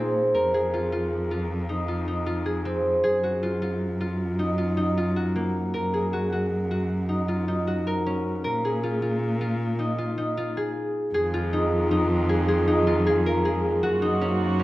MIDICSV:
0, 0, Header, 1, 4, 480
1, 0, Start_track
1, 0, Tempo, 385356
1, 427, Time_signature, 7, 2, 24, 8
1, 18228, End_track
2, 0, Start_track
2, 0, Title_t, "Harp"
2, 0, Program_c, 0, 46
2, 0, Note_on_c, 0, 60, 60
2, 0, Note_on_c, 0, 63, 60
2, 0, Note_on_c, 0, 65, 63
2, 0, Note_on_c, 0, 68, 67
2, 430, Note_on_c, 0, 70, 62
2, 669, Note_off_c, 0, 68, 0
2, 674, Note_on_c, 0, 68, 59
2, 911, Note_off_c, 0, 65, 0
2, 916, Note_on_c, 0, 65, 56
2, 1144, Note_off_c, 0, 65, 0
2, 1149, Note_on_c, 0, 65, 61
2, 1627, Note_off_c, 0, 65, 0
2, 1632, Note_on_c, 0, 65, 57
2, 2101, Note_off_c, 0, 63, 0
2, 2106, Note_on_c, 0, 63, 58
2, 2338, Note_off_c, 0, 65, 0
2, 2343, Note_on_c, 0, 65, 57
2, 2582, Note_off_c, 0, 63, 0
2, 2587, Note_on_c, 0, 63, 59
2, 2814, Note_off_c, 0, 65, 0
2, 2819, Note_on_c, 0, 65, 63
2, 3055, Note_off_c, 0, 68, 0
2, 3060, Note_on_c, 0, 68, 62
2, 3072, Note_off_c, 0, 70, 0
2, 3298, Note_off_c, 0, 60, 0
2, 3303, Note_on_c, 0, 60, 62
2, 3776, Note_off_c, 0, 68, 0
2, 3781, Note_on_c, 0, 68, 70
2, 4029, Note_on_c, 0, 66, 57
2, 4104, Note_off_c, 0, 65, 0
2, 4269, Note_on_c, 0, 65, 60
2, 4344, Note_off_c, 0, 66, 0
2, 4502, Note_off_c, 0, 65, 0
2, 4507, Note_on_c, 0, 65, 57
2, 4984, Note_off_c, 0, 65, 0
2, 4989, Note_on_c, 0, 65, 60
2, 5463, Note_off_c, 0, 63, 0
2, 5468, Note_on_c, 0, 63, 59
2, 5698, Note_off_c, 0, 65, 0
2, 5703, Note_on_c, 0, 65, 55
2, 5937, Note_off_c, 0, 63, 0
2, 5942, Note_on_c, 0, 63, 62
2, 6191, Note_off_c, 0, 65, 0
2, 6196, Note_on_c, 0, 65, 61
2, 6430, Note_on_c, 0, 66, 63
2, 6505, Note_off_c, 0, 65, 0
2, 6613, Note_off_c, 0, 68, 0
2, 6671, Note_on_c, 0, 58, 57
2, 7040, Note_off_c, 0, 60, 0
2, 7147, Note_on_c, 0, 70, 69
2, 7394, Note_on_c, 0, 68, 60
2, 7630, Note_off_c, 0, 66, 0
2, 7635, Note_on_c, 0, 66, 62
2, 7872, Note_off_c, 0, 66, 0
2, 7877, Note_on_c, 0, 66, 58
2, 8352, Note_off_c, 0, 66, 0
2, 8357, Note_on_c, 0, 66, 60
2, 8824, Note_off_c, 0, 63, 0
2, 8829, Note_on_c, 0, 63, 54
2, 9070, Note_on_c, 0, 65, 58
2, 9145, Note_off_c, 0, 66, 0
2, 9313, Note_off_c, 0, 63, 0
2, 9318, Note_on_c, 0, 63, 59
2, 9557, Note_on_c, 0, 66, 66
2, 9632, Note_off_c, 0, 65, 0
2, 9789, Note_off_c, 0, 70, 0
2, 9800, Note_on_c, 0, 70, 66
2, 10044, Note_on_c, 0, 61, 64
2, 10226, Note_off_c, 0, 68, 0
2, 10510, Note_off_c, 0, 70, 0
2, 10515, Note_on_c, 0, 70, 71
2, 10676, Note_off_c, 0, 58, 0
2, 10771, Note_on_c, 0, 68, 60
2, 11004, Note_on_c, 0, 65, 61
2, 11078, Note_off_c, 0, 66, 0
2, 11232, Note_off_c, 0, 65, 0
2, 11237, Note_on_c, 0, 65, 61
2, 11713, Note_off_c, 0, 65, 0
2, 11718, Note_on_c, 0, 65, 63
2, 12189, Note_off_c, 0, 63, 0
2, 12194, Note_on_c, 0, 63, 58
2, 12430, Note_off_c, 0, 65, 0
2, 12435, Note_on_c, 0, 65, 59
2, 12671, Note_off_c, 0, 63, 0
2, 12676, Note_on_c, 0, 63, 55
2, 12916, Note_off_c, 0, 65, 0
2, 12921, Note_on_c, 0, 65, 73
2, 13157, Note_off_c, 0, 70, 0
2, 13160, Note_off_c, 0, 68, 0
2, 13165, Note_on_c, 0, 68, 69
2, 13654, Note_off_c, 0, 61, 0
2, 13873, Note_off_c, 0, 68, 0
2, 13878, Note_on_c, 0, 68, 73
2, 14116, Note_off_c, 0, 65, 0
2, 14121, Note_on_c, 0, 65, 69
2, 14355, Note_off_c, 0, 63, 0
2, 14360, Note_on_c, 0, 63, 68
2, 14831, Note_off_c, 0, 63, 0
2, 14836, Note_on_c, 0, 63, 69
2, 15305, Note_off_c, 0, 68, 0
2, 15310, Note_on_c, 0, 68, 71
2, 15544, Note_off_c, 0, 68, 0
2, 15549, Note_on_c, 0, 68, 67
2, 15783, Note_off_c, 0, 63, 0
2, 15788, Note_on_c, 0, 63, 71
2, 16024, Note_off_c, 0, 65, 0
2, 16029, Note_on_c, 0, 65, 70
2, 16269, Note_off_c, 0, 68, 0
2, 16274, Note_on_c, 0, 68, 79
2, 16518, Note_on_c, 0, 70, 69
2, 16749, Note_off_c, 0, 68, 0
2, 16754, Note_on_c, 0, 68, 71
2, 17225, Note_on_c, 0, 66, 83
2, 17300, Note_off_c, 0, 65, 0
2, 17457, Note_off_c, 0, 63, 0
2, 17462, Note_on_c, 0, 63, 68
2, 17704, Note_on_c, 0, 61, 73
2, 18175, Note_off_c, 0, 61, 0
2, 18180, Note_on_c, 0, 61, 70
2, 18228, Note_off_c, 0, 61, 0
2, 18228, Note_off_c, 0, 63, 0
2, 18228, Note_off_c, 0, 66, 0
2, 18228, Note_off_c, 0, 68, 0
2, 18228, Note_off_c, 0, 70, 0
2, 18228, End_track
3, 0, Start_track
3, 0, Title_t, "String section"
3, 0, Program_c, 1, 48
3, 13881, Note_on_c, 1, 56, 68
3, 13882, Note_on_c, 1, 51, 74
3, 13883, Note_on_c, 1, 65, 80
3, 17197, Note_off_c, 1, 51, 0
3, 17197, Note_off_c, 1, 56, 0
3, 17198, Note_off_c, 1, 65, 0
3, 17218, Note_on_c, 1, 58, 76
3, 17224, Note_on_c, 1, 66, 93
3, 17227, Note_on_c, 1, 65, 71
3, 18228, Note_off_c, 1, 58, 0
3, 18228, Note_off_c, 1, 65, 0
3, 18228, Note_off_c, 1, 66, 0
3, 18228, End_track
4, 0, Start_track
4, 0, Title_t, "Cello"
4, 0, Program_c, 2, 42
4, 0, Note_on_c, 2, 46, 64
4, 423, Note_on_c, 2, 41, 64
4, 442, Note_off_c, 2, 46, 0
4, 3781, Note_on_c, 2, 42, 75
4, 3800, Note_off_c, 2, 41, 0
4, 7159, Note_off_c, 2, 42, 0
4, 7159, Note_on_c, 2, 42, 71
4, 10519, Note_on_c, 2, 46, 66
4, 10538, Note_off_c, 2, 42, 0
4, 13349, Note_off_c, 2, 46, 0
4, 13880, Note_on_c, 2, 41, 80
4, 17234, Note_on_c, 2, 42, 79
4, 17252, Note_off_c, 2, 41, 0
4, 18228, Note_off_c, 2, 42, 0
4, 18228, End_track
0, 0, End_of_file